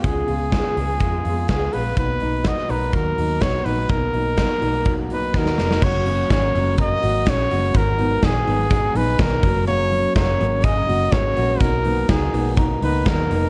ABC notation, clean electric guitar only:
X:1
M:4/4
L:1/16
Q:1/4=124
K:F#
V:1 name="Clean electric guitar"
[C,G,B,EG]2 E2 B,2 G2 G,2 E2 B,2 E2 | B,,2 D2 B,2 A2 F,2 D2 B,2 D2 | B,,2 D2 B,2 A2 F,2 D2 B,2 D2 | F,2 C2 G A C2 A2 F2 C2 F2 |
G,,2 B,2 G2 B,2 G2 D2 B,2 F,2 | F,2 C2 A2 C2 G A F2 C2 F2 | B,,2 B,2 A2 B,2 A2 D2 B,2 D2 |]